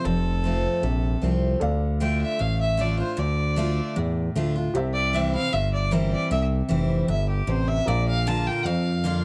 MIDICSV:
0, 0, Header, 1, 5, 480
1, 0, Start_track
1, 0, Key_signature, -1, "minor"
1, 0, Tempo, 390879
1, 68, Time_signature, 4, 2, 24, 8
1, 11353, End_track
2, 0, Start_track
2, 0, Title_t, "Fiddle"
2, 0, Program_c, 0, 110
2, 64, Note_on_c, 0, 69, 84
2, 1508, Note_off_c, 0, 69, 0
2, 2470, Note_on_c, 0, 79, 72
2, 2694, Note_off_c, 0, 79, 0
2, 2718, Note_on_c, 0, 76, 88
2, 2952, Note_on_c, 0, 77, 85
2, 2971, Note_off_c, 0, 76, 0
2, 3192, Note_off_c, 0, 77, 0
2, 3205, Note_on_c, 0, 76, 90
2, 3453, Note_on_c, 0, 74, 80
2, 3472, Note_off_c, 0, 76, 0
2, 3669, Note_off_c, 0, 74, 0
2, 3677, Note_on_c, 0, 72, 86
2, 3915, Note_on_c, 0, 74, 78
2, 3933, Note_off_c, 0, 72, 0
2, 4874, Note_off_c, 0, 74, 0
2, 6058, Note_on_c, 0, 74, 96
2, 6317, Note_on_c, 0, 76, 83
2, 6335, Note_off_c, 0, 74, 0
2, 6547, Note_off_c, 0, 76, 0
2, 6554, Note_on_c, 0, 77, 109
2, 6790, Note_on_c, 0, 76, 89
2, 6809, Note_off_c, 0, 77, 0
2, 7031, Note_off_c, 0, 76, 0
2, 7039, Note_on_c, 0, 74, 83
2, 7275, Note_on_c, 0, 70, 69
2, 7293, Note_off_c, 0, 74, 0
2, 7502, Note_off_c, 0, 70, 0
2, 7509, Note_on_c, 0, 74, 89
2, 7734, Note_off_c, 0, 74, 0
2, 7752, Note_on_c, 0, 76, 86
2, 7896, Note_off_c, 0, 76, 0
2, 8704, Note_on_c, 0, 76, 77
2, 8931, Note_off_c, 0, 76, 0
2, 8955, Note_on_c, 0, 67, 68
2, 9200, Note_on_c, 0, 72, 81
2, 9219, Note_off_c, 0, 67, 0
2, 9435, Note_on_c, 0, 76, 97
2, 9453, Note_off_c, 0, 72, 0
2, 9670, Note_on_c, 0, 74, 88
2, 9688, Note_off_c, 0, 76, 0
2, 9910, Note_off_c, 0, 74, 0
2, 9928, Note_on_c, 0, 77, 105
2, 10164, Note_on_c, 0, 81, 93
2, 10182, Note_off_c, 0, 77, 0
2, 10400, Note_on_c, 0, 79, 101
2, 10418, Note_off_c, 0, 81, 0
2, 10638, Note_on_c, 0, 77, 90
2, 10656, Note_off_c, 0, 79, 0
2, 11353, Note_off_c, 0, 77, 0
2, 11353, End_track
3, 0, Start_track
3, 0, Title_t, "Upright piano"
3, 0, Program_c, 1, 0
3, 1963, Note_on_c, 1, 69, 77
3, 1976, Note_on_c, 1, 74, 70
3, 1992, Note_on_c, 1, 77, 82
3, 5770, Note_off_c, 1, 69, 0
3, 5776, Note_off_c, 1, 74, 0
3, 5784, Note_off_c, 1, 77, 0
3, 5817, Note_on_c, 1, 67, 80
3, 5831, Note_on_c, 1, 72, 67
3, 5852, Note_on_c, 1, 76, 80
3, 9615, Note_off_c, 1, 67, 0
3, 9622, Note_off_c, 1, 72, 0
3, 9632, Note_off_c, 1, 76, 0
3, 9649, Note_on_c, 1, 70, 58
3, 9661, Note_on_c, 1, 74, 56
3, 9681, Note_on_c, 1, 77, 65
3, 11353, Note_off_c, 1, 70, 0
3, 11353, Note_off_c, 1, 74, 0
3, 11353, Note_off_c, 1, 77, 0
3, 11353, End_track
4, 0, Start_track
4, 0, Title_t, "Steel-string acoustic guitar"
4, 0, Program_c, 2, 25
4, 65, Note_on_c, 2, 41, 84
4, 538, Note_on_c, 2, 53, 60
4, 555, Note_on_c, 2, 57, 57
4, 559, Note_on_c, 2, 60, 63
4, 573, Note_on_c, 2, 65, 65
4, 979, Note_off_c, 2, 41, 0
4, 999, Note_off_c, 2, 53, 0
4, 1008, Note_off_c, 2, 57, 0
4, 1010, Note_off_c, 2, 60, 0
4, 1017, Note_off_c, 2, 65, 0
4, 1021, Note_on_c, 2, 48, 81
4, 1493, Note_on_c, 2, 53, 53
4, 1507, Note_on_c, 2, 57, 53
4, 1519, Note_on_c, 2, 60, 60
4, 1527, Note_on_c, 2, 65, 61
4, 1938, Note_off_c, 2, 48, 0
4, 1957, Note_off_c, 2, 53, 0
4, 1965, Note_off_c, 2, 57, 0
4, 1971, Note_off_c, 2, 60, 0
4, 1975, Note_off_c, 2, 65, 0
4, 1977, Note_on_c, 2, 50, 76
4, 2445, Note_off_c, 2, 50, 0
4, 2460, Note_on_c, 2, 50, 88
4, 2469, Note_on_c, 2, 57, 84
4, 2474, Note_on_c, 2, 62, 95
4, 2481, Note_on_c, 2, 65, 91
4, 2922, Note_off_c, 2, 50, 0
4, 2926, Note_off_c, 2, 57, 0
4, 2928, Note_off_c, 2, 62, 0
4, 2932, Note_off_c, 2, 65, 0
4, 2937, Note_on_c, 2, 45, 79
4, 3405, Note_on_c, 2, 50, 76
4, 3419, Note_on_c, 2, 57, 78
4, 3427, Note_on_c, 2, 62, 79
4, 3435, Note_on_c, 2, 65, 90
4, 3636, Note_off_c, 2, 65, 0
4, 3649, Note_off_c, 2, 50, 0
4, 3651, Note_on_c, 2, 65, 52
4, 3656, Note_off_c, 2, 57, 0
4, 3660, Note_off_c, 2, 62, 0
4, 3686, Note_on_c, 2, 62, 47
4, 3856, Note_off_c, 2, 45, 0
4, 3890, Note_on_c, 2, 50, 80
4, 3892, Note_off_c, 2, 65, 0
4, 3909, Note_off_c, 2, 62, 0
4, 4360, Note_off_c, 2, 50, 0
4, 4375, Note_on_c, 2, 50, 83
4, 4387, Note_on_c, 2, 57, 92
4, 4394, Note_on_c, 2, 62, 88
4, 4406, Note_on_c, 2, 65, 98
4, 4840, Note_off_c, 2, 50, 0
4, 4846, Note_off_c, 2, 57, 0
4, 4849, Note_off_c, 2, 62, 0
4, 4855, Note_off_c, 2, 65, 0
4, 4864, Note_on_c, 2, 45, 85
4, 5347, Note_on_c, 2, 50, 73
4, 5353, Note_on_c, 2, 57, 79
4, 5367, Note_on_c, 2, 62, 93
4, 5370, Note_on_c, 2, 65, 87
4, 5579, Note_off_c, 2, 65, 0
4, 5580, Note_off_c, 2, 50, 0
4, 5583, Note_off_c, 2, 57, 0
4, 5590, Note_off_c, 2, 62, 0
4, 5594, Note_on_c, 2, 65, 55
4, 5622, Note_on_c, 2, 62, 44
4, 5780, Note_off_c, 2, 45, 0
4, 5824, Note_off_c, 2, 65, 0
4, 5830, Note_on_c, 2, 48, 90
4, 5838, Note_off_c, 2, 62, 0
4, 6301, Note_on_c, 2, 52, 78
4, 6314, Note_on_c, 2, 55, 84
4, 6330, Note_on_c, 2, 60, 97
4, 6331, Note_on_c, 2, 64, 97
4, 6535, Note_off_c, 2, 64, 0
4, 6537, Note_off_c, 2, 52, 0
4, 6544, Note_off_c, 2, 55, 0
4, 6550, Note_on_c, 2, 64, 50
4, 6552, Note_off_c, 2, 60, 0
4, 6580, Note_on_c, 2, 60, 46
4, 6743, Note_off_c, 2, 48, 0
4, 6782, Note_off_c, 2, 64, 0
4, 6787, Note_on_c, 2, 43, 81
4, 6797, Note_off_c, 2, 60, 0
4, 7259, Note_on_c, 2, 52, 75
4, 7270, Note_on_c, 2, 55, 92
4, 7277, Note_on_c, 2, 60, 88
4, 7285, Note_on_c, 2, 64, 85
4, 7702, Note_off_c, 2, 43, 0
4, 7722, Note_off_c, 2, 52, 0
4, 7727, Note_off_c, 2, 55, 0
4, 7731, Note_off_c, 2, 60, 0
4, 7735, Note_off_c, 2, 64, 0
4, 7748, Note_on_c, 2, 48, 85
4, 8210, Note_on_c, 2, 52, 77
4, 8219, Note_on_c, 2, 55, 84
4, 8234, Note_on_c, 2, 60, 94
4, 8236, Note_on_c, 2, 64, 92
4, 8662, Note_off_c, 2, 48, 0
4, 8677, Note_off_c, 2, 52, 0
4, 8681, Note_off_c, 2, 55, 0
4, 8689, Note_off_c, 2, 60, 0
4, 8690, Note_off_c, 2, 64, 0
4, 8699, Note_on_c, 2, 43, 84
4, 9161, Note_off_c, 2, 43, 0
4, 9177, Note_on_c, 2, 48, 84
4, 9640, Note_off_c, 2, 48, 0
4, 9676, Note_on_c, 2, 46, 90
4, 10152, Note_on_c, 2, 50, 86
4, 10156, Note_on_c, 2, 58, 90
4, 10166, Note_on_c, 2, 62, 92
4, 10174, Note_on_c, 2, 65, 94
4, 10585, Note_off_c, 2, 46, 0
4, 10607, Note_off_c, 2, 50, 0
4, 10609, Note_off_c, 2, 58, 0
4, 10614, Note_off_c, 2, 62, 0
4, 10618, Note_off_c, 2, 65, 0
4, 10633, Note_on_c, 2, 41, 86
4, 11099, Note_on_c, 2, 50, 81
4, 11111, Note_on_c, 2, 58, 92
4, 11120, Note_on_c, 2, 62, 90
4, 11130, Note_on_c, 2, 65, 91
4, 11353, Note_off_c, 2, 41, 0
4, 11353, Note_off_c, 2, 50, 0
4, 11353, Note_off_c, 2, 58, 0
4, 11353, Note_off_c, 2, 62, 0
4, 11353, Note_off_c, 2, 65, 0
4, 11353, End_track
5, 0, Start_track
5, 0, Title_t, "Analog synth bass"
5, 0, Program_c, 3, 38
5, 66, Note_on_c, 3, 29, 89
5, 833, Note_off_c, 3, 29, 0
5, 1019, Note_on_c, 3, 34, 87
5, 1432, Note_off_c, 3, 34, 0
5, 1504, Note_on_c, 3, 36, 82
5, 1915, Note_off_c, 3, 36, 0
5, 1990, Note_on_c, 3, 38, 88
5, 2756, Note_off_c, 3, 38, 0
5, 2952, Note_on_c, 3, 33, 91
5, 3717, Note_off_c, 3, 33, 0
5, 3908, Note_on_c, 3, 38, 95
5, 4675, Note_off_c, 3, 38, 0
5, 4868, Note_on_c, 3, 40, 92
5, 5278, Note_off_c, 3, 40, 0
5, 5348, Note_on_c, 3, 38, 82
5, 5758, Note_off_c, 3, 38, 0
5, 5827, Note_on_c, 3, 36, 88
5, 6595, Note_off_c, 3, 36, 0
5, 6796, Note_on_c, 3, 31, 92
5, 7560, Note_off_c, 3, 31, 0
5, 7748, Note_on_c, 3, 36, 92
5, 8132, Note_off_c, 3, 36, 0
5, 8234, Note_on_c, 3, 29, 84
5, 8641, Note_off_c, 3, 29, 0
5, 8706, Note_on_c, 3, 31, 96
5, 9116, Note_off_c, 3, 31, 0
5, 9182, Note_on_c, 3, 33, 80
5, 9594, Note_off_c, 3, 33, 0
5, 9668, Note_on_c, 3, 34, 91
5, 10434, Note_off_c, 3, 34, 0
5, 10622, Note_on_c, 3, 41, 96
5, 11353, Note_off_c, 3, 41, 0
5, 11353, End_track
0, 0, End_of_file